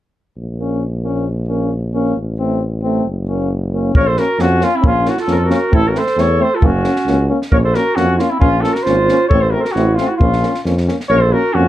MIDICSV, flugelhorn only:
0, 0, Header, 1, 2, 480
1, 0, Start_track
1, 0, Tempo, 446761
1, 403, Time_signature, 2, 2, 24, 8
1, 12551, End_track
2, 0, Start_track
2, 0, Title_t, "Flugelhorn"
2, 0, Program_c, 0, 56
2, 4261, Note_on_c, 0, 73, 94
2, 4371, Note_on_c, 0, 72, 86
2, 4387, Note_off_c, 0, 73, 0
2, 4497, Note_on_c, 0, 70, 86
2, 4513, Note_off_c, 0, 72, 0
2, 4734, Note_on_c, 0, 66, 86
2, 4750, Note_off_c, 0, 70, 0
2, 4979, Note_on_c, 0, 65, 80
2, 4995, Note_off_c, 0, 66, 0
2, 5109, Note_on_c, 0, 64, 58
2, 5125, Note_off_c, 0, 65, 0
2, 5212, Note_off_c, 0, 64, 0
2, 5225, Note_on_c, 0, 65, 89
2, 5468, Note_on_c, 0, 66, 71
2, 5484, Note_off_c, 0, 65, 0
2, 5579, Note_off_c, 0, 66, 0
2, 5588, Note_on_c, 0, 69, 68
2, 5708, Note_on_c, 0, 70, 85
2, 5724, Note_off_c, 0, 69, 0
2, 5743, Note_on_c, 0, 69, 66
2, 5759, Note_off_c, 0, 70, 0
2, 5852, Note_on_c, 0, 70, 87
2, 5868, Note_off_c, 0, 69, 0
2, 6174, Note_on_c, 0, 69, 92
2, 6191, Note_off_c, 0, 70, 0
2, 6314, Note_on_c, 0, 70, 76
2, 6330, Note_off_c, 0, 69, 0
2, 6424, Note_on_c, 0, 72, 88
2, 6440, Note_off_c, 0, 70, 0
2, 6661, Note_on_c, 0, 73, 85
2, 6677, Note_off_c, 0, 72, 0
2, 6901, Note_on_c, 0, 72, 86
2, 6917, Note_off_c, 0, 73, 0
2, 7042, Note_on_c, 0, 69, 52
2, 7058, Note_off_c, 0, 72, 0
2, 7144, Note_on_c, 0, 66, 80
2, 7160, Note_off_c, 0, 69, 0
2, 7848, Note_off_c, 0, 66, 0
2, 8090, Note_on_c, 0, 73, 90
2, 8142, Note_off_c, 0, 73, 0
2, 8208, Note_on_c, 0, 72, 80
2, 8322, Note_on_c, 0, 70, 92
2, 8338, Note_off_c, 0, 72, 0
2, 8548, Note_on_c, 0, 66, 83
2, 8564, Note_off_c, 0, 70, 0
2, 8769, Note_off_c, 0, 66, 0
2, 8769, Note_on_c, 0, 66, 60
2, 8792, Note_on_c, 0, 65, 83
2, 8809, Note_off_c, 0, 66, 0
2, 8918, Note_on_c, 0, 64, 62
2, 8934, Note_off_c, 0, 65, 0
2, 9011, Note_off_c, 0, 64, 0
2, 9017, Note_on_c, 0, 65, 88
2, 9251, Note_on_c, 0, 69, 79
2, 9267, Note_off_c, 0, 65, 0
2, 9376, Note_on_c, 0, 70, 64
2, 9392, Note_off_c, 0, 69, 0
2, 9483, Note_on_c, 0, 72, 90
2, 9499, Note_off_c, 0, 70, 0
2, 9967, Note_off_c, 0, 72, 0
2, 9973, Note_on_c, 0, 73, 100
2, 10108, Note_on_c, 0, 72, 79
2, 10124, Note_off_c, 0, 73, 0
2, 10213, Note_on_c, 0, 70, 79
2, 10229, Note_off_c, 0, 72, 0
2, 10313, Note_on_c, 0, 72, 71
2, 10329, Note_off_c, 0, 70, 0
2, 10331, Note_on_c, 0, 70, 78
2, 10348, Note_off_c, 0, 72, 0
2, 10442, Note_on_c, 0, 66, 70
2, 10458, Note_off_c, 0, 70, 0
2, 10690, Note_on_c, 0, 65, 81
2, 10706, Note_off_c, 0, 66, 0
2, 10819, Note_on_c, 0, 66, 59
2, 10836, Note_off_c, 0, 65, 0
2, 10917, Note_off_c, 0, 66, 0
2, 10924, Note_on_c, 0, 65, 81
2, 11388, Note_off_c, 0, 65, 0
2, 11912, Note_on_c, 0, 73, 113
2, 12034, Note_on_c, 0, 72, 93
2, 12050, Note_off_c, 0, 73, 0
2, 12167, Note_on_c, 0, 70, 100
2, 12184, Note_off_c, 0, 72, 0
2, 12392, Note_on_c, 0, 66, 84
2, 12408, Note_off_c, 0, 70, 0
2, 12551, Note_off_c, 0, 66, 0
2, 12551, End_track
0, 0, End_of_file